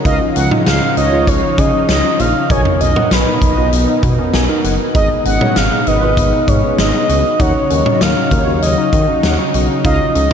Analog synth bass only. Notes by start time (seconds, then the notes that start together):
0.05 C#2
0.36 C#2
0.66 C#2
0.97 C#2
1.12 C#2
1.27 C#2
1.58 C#3
1.89 C#2
2.19 A#1
2.50 B1
2.81 B1
3.11 B1
3.42 B1
3.57 B1
3.73 B1
4.03 B2
4.34 B1
4.64 F#1
4.95 G#1
5.26 G#1
5.56 G#1
5.87 G#1
6.02 G#1
6.17 G#1
6.48 G#2
6.79 G#1
7.09 C#2
7.40 D#2
7.70 D#2
8.01 D#2
8.31 D#2
8.47 D#2
8.62 D#2
8.93 D#3
9.23 D#2
9.54 B1
9.85 C#2
10.15 C#2